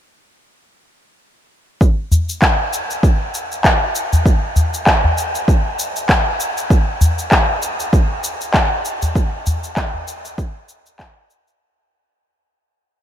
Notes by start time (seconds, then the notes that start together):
1.81 kick, shaker
2.12 udu, shaker
2.29 shaker
2.42 kick, clap, shaker
2.73 shaker
2.90 shaker
3.03 kick, shaker
3.34 shaker
3.52 shaker
3.64 kick, clap, shaker
3.95 shaker
4.13 udu, shaker
4.26 kick, shaker
4.56 udu, shaker
4.74 shaker
4.87 kick, clap, shaker
5.04 udu
5.18 shaker
5.35 shaker
5.48 kick, shaker
5.79 shaker
5.96 shaker
6.09 kick, clap, shaker
6.40 shaker
6.57 shaker
6.70 kick, shaker
7.01 udu, shaker
7.19 shaker
7.32 kick, clap, shaker
7.62 shaker
7.80 shaker
7.93 kick, shaker
8.24 shaker
8.41 shaker
8.54 kick, clap, shaker
8.85 shaker
9.02 udu, shaker
9.16 kick, shaker
9.46 udu, shaker
9.64 shaker
9.77 kick, clap, shaker
9.94 udu
10.08 shaker
10.25 shaker
10.38 kick, shaker
10.69 shaker
10.86 shaker
10.99 kick, clap, shaker
11.30 shaker
11.48 shaker